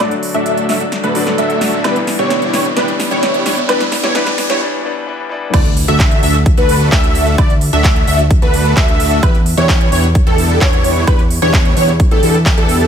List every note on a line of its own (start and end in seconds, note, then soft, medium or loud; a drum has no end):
0.00 1.15 D3 medium
0.00 1.15 F#3 medium
0.00 0.13 A3 medium
0.00 1.15 A3 medium
0.00 0.13 D4 medium
0.00 1.16 D4 medium
0.00 0.13 F#4 medium
0.00 0.13 A4 medium
0.00 0.13 D5 medium
0.00 riser medium
0.11 closed hi-hat soft
0.23 open hi-hat loud
0.34 0.66 A3 medium
0.34 0.66 D4 medium
0.34 0.66 F#4 medium
0.34 0.66 A4 medium
0.34 0.66 E5 loud
0.34 closed hi-hat soft
0.46 closed hi-hat medium
0.57 closed hi-hat soft
0.69 0.83 A3 medium
0.69 0.83 D4 medium
0.69 0.83 F#4 medium
0.69 0.83 A4 medium
0.69 0.83 E5 medium
0.69 snare medium
0.69 open hi-hat loud
0.81 closed hi-hat soft
0.92 snare medium
0.92 closed hi-hat medium
1.03 1.35 A3 medium
1.03 1.35 D4 medium
1.03 1.35 F#4 medium
1.03 1.35 A4 medium
1.03 1.35 B4 medium
1.03 closed hi-hat soft
1.15 1.33 D3 medium
1.15 1.33 F#3 medium
1.15 1.33 A3 medium
1.15 1.33 D4 loud
1.15 open hi-hat loud
1.27 snare medium
1.27 closed hi-hat soft
1.38 1.82 A3 medium
1.38 1.82 D4 medium
1.38 1.82 F#4 medium
1.38 1.82 A4 medium
1.38 1.82 E5 loud
1.38 closed hi-hat medium
1.50 closed hi-hat soft
1.61 snare medium
1.61 open hi-hat loud
1.73 closed hi-hat soft
1.83 2.74 E3 medium
1.83 2.75 G3 medium
1.83 1.98 B3 medium
1.83 2.75 B3 medium
1.83 1.98 D4 medium
1.83 2.75 D4 medium
1.83 1.98 E4 medium
1.83 1.98 G4 medium
1.83 1.98 B4 medium
1.83 snare medium
1.83 closed hi-hat medium
1.83 high woodblock medium
1.96 closed hi-hat soft
2.07 snare medium
2.07 open hi-hat loud
2.19 2.51 B3 medium
2.19 2.51 D4 medium
2.19 2.51 E4 medium
2.19 2.51 G4 medium
2.19 2.51 C#5 loud
2.19 closed hi-hat soft
2.30 snare medium
2.30 closed hi-hat medium
2.42 closed hi-hat soft
2.53 2.67 B3 medium
2.53 2.67 D4 medium
2.53 2.67 E4 medium
2.53 2.67 G4 medium
2.53 2.67 C#5 medium
2.53 snare medium
2.53 open hi-hat loud
2.65 closed hi-hat soft
2.75 3.66 E3 medium
2.75 3.67 G3 medium
2.75 2.90 B3 medium
2.75 3.67 B3 medium
2.75 2.90 D4 medium
2.75 3.68 D4 medium
2.75 2.90 E4 medium
2.75 2.90 G4 medium
2.75 2.90 B4 medium
2.75 snare medium
2.75 closed hi-hat medium
2.88 closed hi-hat soft
3.00 snare medium
3.00 open hi-hat loud
3.11 3.43 B3 medium
3.11 3.43 D4 medium
3.11 3.43 E4 medium
3.11 3.43 G4 medium
3.11 3.43 C#5 loud
3.11 closed hi-hat soft
3.23 snare medium
3.23 closed hi-hat medium
3.34 closed hi-hat soft
3.46 3.60 B3 medium
3.46 3.60 D4 medium
3.46 3.60 E4 medium
3.46 3.60 G4 medium
3.46 3.60 C#5 medium
3.46 snare medium
3.46 open hi-hat loud
3.57 closed hi-hat soft
3.68 4.12 E3 medium
3.68 4.13 G3 medium
3.68 3.83 B3 medium
3.68 4.13 B3 medium
3.68 3.83 D4 medium
3.68 4.14 D4 medium
3.68 3.83 E4 medium
3.68 3.83 G4 medium
3.68 3.83 B4 medium
3.68 snare medium
3.68 closed hi-hat medium
3.68 high woodblock medium
3.80 snare medium
3.80 closed hi-hat soft
3.92 snare medium
3.92 open hi-hat loud
4.03 4.13 B3 loud
4.03 4.13 D4 medium
4.03 4.13 E4 medium
4.03 4.13 G4 medium
4.03 4.13 C#5 loud
4.03 snare medium
4.14 4.59 E3 medium
4.14 4.59 G3 medium
4.14 4.29 B3 medium
4.14 4.60 B3 medium
4.14 4.29 D4 medium
4.14 4.60 D4 loud
4.14 4.29 E4 medium
4.14 4.29 G4 medium
4.14 4.29 B4 medium
4.14 snare loud
4.14 closed hi-hat medium
4.27 snare medium
4.27 closed hi-hat soft
4.38 snare medium
4.38 open hi-hat loud
4.50 4.59 B3 medium
4.50 4.59 D4 medium
4.50 4.59 E4 medium
4.50 4.59 G4 medium
4.50 4.59 C#5 loud
4.50 snare medium
4.50 closed hi-hat soft
4.60 4.82 E3 medium
4.60 4.82 G3 medium
4.60 4.83 B3 medium
4.60 4.83 D4 loud
4.83 5.05 E3 medium
4.83 5.05 G3 medium
4.83 5.06 B3 medium
4.83 5.06 D4 loud
5.06 5.28 E3 medium
5.06 5.28 G3 medium
5.06 5.29 B3 medium
5.06 5.29 D4 loud
5.29 5.51 E3 medium
5.29 5.52 G3 medium
5.29 5.52 B3 medium
5.29 5.52 D4 loud
5.54 5.86 D2 medium
5.54 5.67 A3 medium
5.54 5.67 D4 medium
5.54 5.67 F#4 medium
5.54 5.67 A4 medium
5.54 5.67 D5 medium
5.54 kick loud
5.54 closed hi-hat medium
5.54 crash loud
5.54 impact medium
5.54 high woodblock medium
5.65 closed hi-hat soft
5.77 open hi-hat loud
5.88 6.21 D2 loud
5.88 6.20 A3 loud
5.88 6.20 D4 medium
5.88 6.20 F#4 medium
5.88 6.20 A4 medium
5.88 6.20 E5 loud
5.88 closed hi-hat soft
6.00 kick loud
6.00 clap loud
6.00 closed hi-hat medium
6.11 closed hi-hat soft
6.23 6.55 D2 medium
6.23 6.37 A3 medium
6.23 6.37 D4 medium
6.23 6.37 F#4 medium
6.23 6.37 A4 medium
6.23 6.37 E5 medium
6.23 open hi-hat loud
6.34 closed hi-hat soft
6.46 kick loud
6.46 closed hi-hat medium
6.57 6.90 D2 loud
6.57 6.89 A3 medium
6.57 6.89 D4 medium
6.57 6.89 F#4 medium
6.57 6.89 A4 medium
6.57 6.89 B4 medium
6.57 closed hi-hat soft
6.69 open hi-hat loud
6.92 7.36 D2 loud
6.92 7.35 A3 loud
6.92 7.35 D4 medium
6.92 7.35 F#4 medium
6.92 7.35 A4 medium
6.92 7.35 E5 loud
6.92 7.36 E5 loud
6.92 kick loud
6.92 clap loud
6.92 closed hi-hat medium
7.04 closed hi-hat soft
7.15 open hi-hat loud
7.27 closed hi-hat soft
7.38 7.71 D2 loud
7.38 7.52 A3 medium
7.38 7.52 D4 medium
7.38 7.52 F#4 medium
7.38 7.52 A4 medium
7.38 7.52 D5 medium
7.38 kick loud
7.38 closed hi-hat medium
7.38 high woodblock medium
7.50 closed hi-hat soft
7.61 open hi-hat loud
7.73 8.05 D2 loud
7.73 8.05 A3 loud
7.73 8.05 D4 medium
7.73 8.05 F#4 medium
7.73 8.05 A4 medium
7.73 8.05 E5 loud
7.73 closed hi-hat soft
7.84 kick loud
7.84 clap loud
7.84 closed hi-hat medium
7.96 closed hi-hat soft
8.07 8.40 D2 loud
8.07 8.21 A3 medium
8.07 8.21 D4 medium
8.07 8.21 F#4 medium
8.07 8.21 A4 medium
8.07 8.21 E5 medium
8.07 open hi-hat loud
8.19 closed hi-hat soft
8.31 kick loud
8.31 closed hi-hat medium
8.42 8.74 D2 loud
8.42 8.74 A3 medium
8.42 8.74 D4 medium
8.42 8.74 F#4 medium
8.42 8.74 A4 medium
8.42 8.74 B4 medium
8.42 closed hi-hat soft
8.54 open hi-hat loud
8.65 closed hi-hat soft
8.77 9.21 D2 loud
8.77 9.20 A3 loud
8.77 9.20 D4 medium
8.77 9.20 F#4 medium
8.77 9.20 A4 medium
8.77 9.20 E5 loud
8.77 kick loud
8.77 clap loud
8.77 closed hi-hat medium
8.88 closed hi-hat soft
9.00 open hi-hat loud
9.11 closed hi-hat soft
9.23 9.55 E2 loud
9.23 9.36 B3 medium
9.23 9.37 D4 medium
9.23 9.37 E4 medium
9.23 9.37 G4 medium
9.23 9.36 B4 medium
9.23 9.37 B4 medium
9.23 kick loud
9.23 closed hi-hat medium
9.23 high woodblock medium
9.35 closed hi-hat soft
9.46 open hi-hat loud
9.57 9.90 E2 loud
9.57 9.89 B3 loud
9.57 9.89 D4 medium
9.57 9.89 E4 medium
9.57 9.89 G4 medium
9.57 9.89 C#5 loud
9.57 closed hi-hat soft
9.69 kick loud
9.69 clap loud
9.69 closed hi-hat medium
9.81 closed hi-hat soft
9.92 10.24 E2 medium
9.92 10.06 B3 medium
9.92 10.06 D4 medium
9.92 10.06 E4 medium
9.92 10.06 G4 medium
9.92 10.06 C#5 medium
9.92 open hi-hat loud
10.04 closed hi-hat soft
10.15 kick loud
10.15 closed hi-hat medium
10.26 10.59 E2 loud
10.26 10.59 B3 medium
10.26 10.59 D4 medium
10.26 10.59 E4 medium
10.26 10.59 G4 medium
10.26 10.58 A4 medium
10.26 10.59 A4 medium
10.26 closed hi-hat soft
10.38 open hi-hat loud
10.50 closed hi-hat soft
10.61 11.05 E2 loud
10.61 11.05 B3 medium
10.61 11.05 D4 medium
10.61 11.05 E4 medium
10.61 11.05 G4 medium
10.61 11.05 C#5 loud
10.61 kick loud
10.61 clap loud
10.61 closed hi-hat medium
10.73 closed hi-hat soft
10.84 open hi-hat loud
10.96 closed hi-hat soft
11.07 11.40 E2 loud
11.07 11.21 B3 medium
11.07 11.21 D4 medium
11.07 11.21 E4 medium
11.07 11.21 G4 medium
11.07 11.21 B4 medium
11.07 kick loud
11.07 closed hi-hat medium
11.07 high woodblock medium
11.19 closed hi-hat soft
11.31 open hi-hat loud
11.42 11.74 E2 loud
11.42 11.74 B3 loud
11.42 11.74 D4 medium
11.42 11.74 E4 medium
11.42 11.74 G4 medium
11.42 11.74 C#5 loud
11.42 closed hi-hat soft
11.54 kick loud
11.54 clap loud
11.54 closed hi-hat medium
11.65 closed hi-hat soft
11.77 12.09 E2 loud
11.77 11.90 B3 medium
11.77 11.90 D4 medium
11.77 11.90 E4 medium
11.77 11.90 G4 medium
11.77 11.90 C#5 medium
11.77 open hi-hat loud
11.88 closed hi-hat soft
12.00 kick loud
12.00 closed hi-hat medium
12.11 12.21 E2 loud
12.11 12.21 B3 medium
12.11 12.21 D4 medium
12.11 12.21 E4 medium
12.11 12.21 G4 medium
12.11 12.21 A4 medium
12.11 closed hi-hat soft
12.23 12.55 E2 loud
12.23 12.37 B3 medium
12.23 12.37 D4 medium
12.23 12.37 E4 medium
12.23 12.37 G4 medium
12.23 12.36 A4 medium
12.23 12.37 A4 medium
12.23 open hi-hat loud
12.34 closed hi-hat soft
12.46 kick loud
12.46 clap loud
12.46 closed hi-hat medium
12.57 12.87 E2 medium
12.57 12.87 B3 medium
12.57 12.87 D4 medium
12.57 12.87 E4 medium
12.57 12.87 G4 medium
12.57 12.87 A4 medium
12.57 closed hi-hat soft
12.69 open hi-hat loud
12.81 closed hi-hat soft